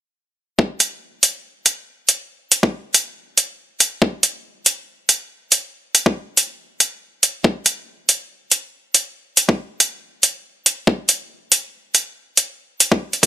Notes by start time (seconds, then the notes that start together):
0.59 kick
0.80 closed hi-hat
1.23 closed hi-hat
1.66 closed hi-hat
2.09 closed hi-hat
2.52 closed hi-hat
2.63 kick
2.94 closed hi-hat
3.38 closed hi-hat
3.80 closed hi-hat
4.02 kick
4.23 closed hi-hat
4.66 closed hi-hat
5.09 closed hi-hat
5.52 closed hi-hat
5.95 closed hi-hat
6.06 kick
6.37 closed hi-hat
6.80 closed hi-hat
7.23 closed hi-hat
7.44 kick
7.66 closed hi-hat
8.09 closed hi-hat
8.52 closed hi-hat
8.94 closed hi-hat
9.37 closed hi-hat
9.49 kick
9.80 closed hi-hat
10.23 closed hi-hat
10.66 closed hi-hat
10.87 kick
11.09 closed hi-hat
11.52 closed hi-hat
11.95 closed hi-hat
12.37 closed hi-hat
12.80 closed hi-hat
12.92 kick
13.13 closed hi-hat
13.23 kick, closed hi-hat